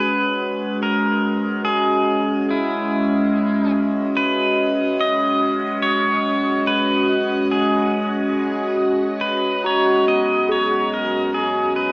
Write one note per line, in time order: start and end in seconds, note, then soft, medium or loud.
0.00 4.12 B1 medium
0.00 11.92 G#3 medium
0.00 11.92 C#4 medium
0.00 11.92 F#4 medium
0.00 0.82 B4 medium
0.70 11.92 D#5 medium
0.83 1.64 A#4 medium
1.65 2.51 G#4 medium
2.51 3.71 E4 medium
4.16 9.16 B1 medium
4.16 5.02 B4 loud
5.01 5.79 D#5 loud
5.82 6.69 C#5 medium
6.67 7.54 B4 medium
7.51 8.74 G#4 medium
9.21 11.92 B1 medium
9.21 9.65 B4 medium
9.64 10.44 F#4 soft
9.64 10.08 C#5 medium
9.64 11.92 A#5 soft
10.07 11.92 B3 soft
10.07 10.51 D#5 medium
10.49 11.92 G#4 medium
10.49 10.93 C#5 medium
10.94 11.35 A#4 medium
11.34 11.76 G#4 medium
11.76 11.92 B4 medium